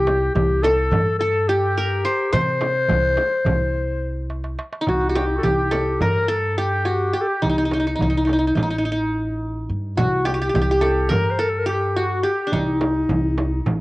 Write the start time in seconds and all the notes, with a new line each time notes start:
Already playing: C2 G4
0.07 darbuka tek, frame drum
0.35 C2 G4, darbuka dum, frame drum
0.62 A4, darbuka tek, frame drum
0.91 G2, darbuka dum, frame drum
1.19 A4
1.48 G4
1.77 A#4
2.05 C5, darbuka ka
2.32 C3 C5, darbuka dum, frame drum
2.61 darbuka tek, frame drum
2.89 C2, darbuka dum, frame drum
3.17 darbuka tek, frame drum
3.45 C2, darbuka dum, frame drum
3.74 darbuka ka
4.30 darbuka tek
4.44 darbuka ka
4.59 darbuka tek
4.73 darbuka ka
4.81 D#4
4.87 C2 F#4, frame drum, darbuka dum
5.08 F#4 G4
5.15 F#4 G4, darbuka tek, frame drum
5.27 D#4
5.36 F#4 A4
5.43 C2 G4, darbuka dum, frame drum
5.71 A4, darbuka tek, frame drum
6.00 G2 A#4, frame drum, darbuka dum
6.28 A4
6.58 G4
6.85 F#4
7.13 G4
7.21 A4
7.28 G4
7.42 C2 D#4, darbuka dum, frame drum
7.49 D#4
7.58 D#4
7.65 D#4
7.71 D#4, darbuka tek, frame drum
7.80 D#4
7.87 D#4
7.95 D#4, darbuka dum
8.00 C2 D#4, frame drum
8.10 D#4
8.17 D#4
8.25 D#4, darbuka tek
8.29 D#4, frame drum
8.38 D#4
8.47 D#4
8.55 A1 D#4, darbuka dum, frame drum
8.62 D#4
8.70 D#4
8.78 D#4
8.85 D#4
8.92 D#4
9.69 G2
9.97 C2 F#4, darbuka dum, frame drum
10.25 G4, darbuka tek, frame drum
10.34 F#4 G4
10.40 G4
10.49 G4
10.54 C2 G4, darbuka dum, frame drum
10.62 G4
10.71 G4
10.81 A4, darbuka tek, frame drum
11.09 G2 A#4, darbuka dum, frame drum
11.31 C5
11.39 A4 A#4
11.50 A4
11.58 A#4
11.66 G4
11.96 F#4
12.23 G4
12.47 D4
12.52 C2 D#4, darbuka dum, frame drum
12.67 darbuka ka
12.81 darbuka tek, frame drum
13.09 C2, frame drum, darbuka dum
13.38 darbuka tek, frame drum
13.66 A1, frame drum, darbuka dum